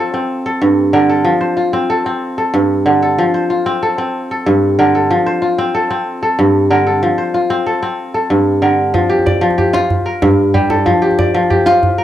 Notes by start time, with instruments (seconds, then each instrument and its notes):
Already playing: kora F3 C4 F4 C5
0.00 kora A4
0.14 kora C4
0.46 kora A4
0.62 kora G2
0.93 kora D3 A#4
1.09 kora A4
1.25 kora F3
1.41 kora C5
1.57 kora F4
1.73 kora C4
1.90 kora A4
2.06 kora C4
2.38 kora A4
2.54 kora G2
2.86 kora D3
3.02 kora A4
3.18 kora F3
3.34 kora C5
3.50 kora F4
3.66 kora C4
3.82 kora A4
3.98 kora C4
4.31 kora A4
4.46 kora G2
4.79 kora D3 A#4
4.95 kora A4
5.11 kora F3
5.26 kora C5
5.42 kora F4
5.58 kora C4
5.75 kora A4
5.90 kora C4
6.23 kora A4
6.39 kora G2
6.70 kora D3 A#4
6.87 kora A4
7.03 kora F3
7.18 kora C5
7.34 kora F4
7.50 kora C4
7.66 kora A4
7.82 kora C4
8.14 kora A4
8.30 kora G2
8.62 kora D3 A#4
8.94 kora F3, djembe bass
9.02 djembe slap
9.10 kora G4
9.19 djembe tone
9.26 kora D5, djembe slap, djembe bass
9.35 djembe slap
9.41 kora F3
9.51 djembe slap, djembe tone
9.58 kora G4, djembe bass
9.73 kora F4, djembe slap
9.82 djembe slap
9.90 djembe tone, djembe bass
10.06 kora A#4
10.22 kora G2, djembe slap, djembe bass
10.31 djembe tone
10.54 kora G3 G4, djembe slap, djembe bass
10.70 kora A4, djembe slap, djembe tone
10.86 kora F3, djembe bass
10.95 djembe slap
11.02 kora G4
11.11 djembe tone
11.18 kora D5, djembe slap, djembe bass
11.27 djembe slap
11.34 kora F3
11.43 djembe slap, djembe tone
11.50 kora G4, djembe bass
11.66 kora F4, djembe slap
11.75 djembe slap
11.83 djembe tone, djembe bass
11.98 kora A#4